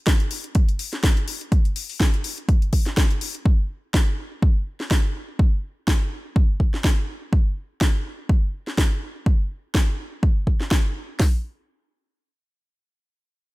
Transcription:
0.07 kick loud
0.07 snare loud
0.07 closed hi-hat medium
0.20 closed hi-hat soft
0.31 open hi-hat loud
0.44 closed hi-hat soft
0.55 kick loud
0.55 closed hi-hat medium
0.69 closed hi-hat soft
0.79 open hi-hat loud
0.93 snare soft
0.93 closed hi-hat soft
1.04 kick loud
1.04 snare loud
1.04 closed hi-hat medium
1.17 closed hi-hat soft
1.28 open hi-hat loud
1.41 closed hi-hat soft
1.52 kick loud
1.52 closed hi-hat medium
1.65 closed hi-hat soft
1.76 open hi-hat loud
1.89 open hi-hat medium
2.00 kick loud
2.00 snare loud
2.14 closed hi-hat soft
2.24 open hi-hat loud
2.38 closed hi-hat soft
2.49 kick loud
2.49 closed hi-hat medium
2.62 closed hi-hat soft
2.73 kick medium
2.73 open hi-hat loud
2.86 snare soft
2.86 closed hi-hat soft
2.97 kick loud
2.97 snare loud
2.97 closed hi-hat medium
3.10 closed hi-hat soft
3.21 open hi-hat loud
3.35 closed hi-hat soft
3.46 kick loud
3.94 kick loud
3.94 snare loud
4.42 kick loud
4.80 snare soft
4.91 kick loud
4.91 snare loud
5.39 kick loud
5.88 kick loud
5.88 snare loud
6.36 kick loud
6.60 kick medium
6.74 snare soft
6.84 kick loud
6.84 snare loud
7.33 kick loud
7.81 kick loud
7.81 snare loud
8.29 kick loud
8.67 snare soft
8.78 kick loud
8.78 snare loud
9.26 kick loud
9.75 kick loud
9.75 snare loud
10.23 kick loud
10.47 kick medium
10.60 snare soft
10.71 kick loud
10.71 snare loud
11.19 kick medium
11.19 snare loud
11.19 open hi-hat medium

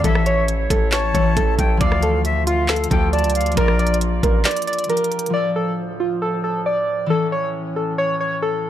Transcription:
0.01 0.68 A1 loud
0.01 1.12 E3 medium
0.01 3.54 A3 medium
0.01 1.15 C#4 medium
0.01 1.79 E4 medium
0.01 0.21 A4 medium
0.01 1.79 C#5 medium
0.01 0.46 E5 loud
0.01 kick loud
0.01 closed hi-hat medium
0.08 1.83 A4 medium
0.15 cross-stick medium
0.26 0.43 C#5 medium
0.26 closed hi-hat medium
0.48 closed hi-hat medium
0.70 1.13 A1 loud
0.70 0.87 A4 medium
0.70 kick loud
0.70 closed hi-hat medium
0.92 1.09 C#5 medium
0.92 1.55 A5 loud
0.92 snare loud
0.92 clap medium
0.92 closed hi-hat medium
1.13 1.36 A1 loud
1.13 1.86 E3 medium
1.13 1.86 C#4 medium
1.13 1.83 E4 medium
1.13 1.32 C#5 medium
1.13 kick loud
1.13 closed hi-hat medium
1.37 1.58 A1 loud
1.37 1.78 A4 medium
1.37 kick loud
1.37 closed hi-hat medium
1.59 1.80 A1 loud
1.59 1.80 G5 medium
1.59 kick loud
1.59 closed hi-hat medium
1.77 2.87 D2 loud
1.77 3.55 D3 medium
1.77 2.89 F3 medium
1.77 2.91 D4 medium
1.77 5.17 F4 medium
1.77 1.98 D5 loud
1.77 2.22 F5 loud
1.77 kick loud
1.77 closed hi-hat medium
1.84 3.67 A4 medium
1.92 cross-stick loud
2.03 2.20 A4 medium
2.03 closed hi-hat medium
2.25 2.46 E5 medium
2.25 closed hi-hat medium
2.47 2.64 F4 medium
2.47 2.88 F5 medium
2.47 closed hi-hat medium
2.68 2.86 A4 medium
2.68 snare loud
2.68 clap medium
2.68 closed hi-hat medium
2.76 closed hi-hat medium
2.84 closed hi-hat medium
2.90 3.26 D2 loud
2.90 3.53 F3 medium
2.90 3.57 D4 soft
2.90 4.91 G4 medium
2.90 3.08 A4 medium
2.90 3.12 G5 medium
2.90 kick loud
2.90 closed hi-hat medium
3.13 3.55 D5 medium
3.13 3.34 A5 medium
3.13 closed hi-hat soft
3.19 closed hi-hat medium
3.24 3.42 C#2 loud
3.24 closed hi-hat medium
3.30 closed hi-hat medium
3.35 3.56 F5 medium
3.35 closed hi-hat medium
3.41 3.56 D2 loud
3.41 closed hi-hat medium
3.46 closed hi-hat medium
3.52 4.87 F3 medium
3.52 closed hi-hat soft
3.57 4.21 A#1 loud
3.57 5.17 A#3 medium
3.57 4.89 D4 medium
3.57 3.74 A#4 medium
3.57 5.42 A#4 medium
3.57 3.99 D5 loud
3.57 5.17 D5 medium
3.57 kick loud
3.57 closed hi-hat medium
3.68 cross-stick medium
3.79 3.96 D5 medium
3.79 closed hi-hat soft
3.87 closed hi-hat medium
3.94 closed hi-hat medium
4.01 closed hi-hat medium
4.23 4.45 A1 loud
4.23 4.40 A#4 medium
4.23 kick loud
4.23 closed hi-hat medium
4.45 4.62 D5 medium
4.45 snare loud
4.45 clap medium
4.45 closed hi-hat medium
4.51 closed hi-hat medium
4.56 closed hi-hat medium
4.62 closed hi-hat medium
4.67 4.84 D5 medium
4.67 closed hi-hat medium
4.73 closed hi-hat medium
4.79 closed hi-hat medium
4.84 5.29 F3 medium
4.84 closed hi-hat medium
4.90 5.32 D4 soft
4.90 5.34 G4 medium
4.90 5.31 A#4 medium
4.90 closed hi-hat soft
4.97 closed hi-hat medium
5.04 closed hi-hat medium
5.12 closed hi-hat medium
5.12 open hi-hat medium
5.19 closed hi-hat medium
5.26 7.15 F3 medium
5.26 closed hi-hat medium
5.33 7.08 D2 medium
5.33 8.70 A2 medium
5.33 7.08 F3 medium
5.33 7.16 D4 medium
5.33 7.13 A4 medium
5.33 5.51 D5 medium
5.56 5.73 A4 medium
6.00 6.17 F4 medium
6.22 6.39 A4 medium
6.44 6.61 A4 medium
6.66 7.07 D5 medium
7.06 8.70 E3 medium
7.06 8.70 C#4 medium
7.06 7.27 A4 medium
7.13 8.70 A4 medium
7.32 7.49 C#5 medium
7.76 7.93 A4 medium
7.98 8.15 C#5 medium
8.21 8.37 C#5 medium
8.42 8.70 A4 medium

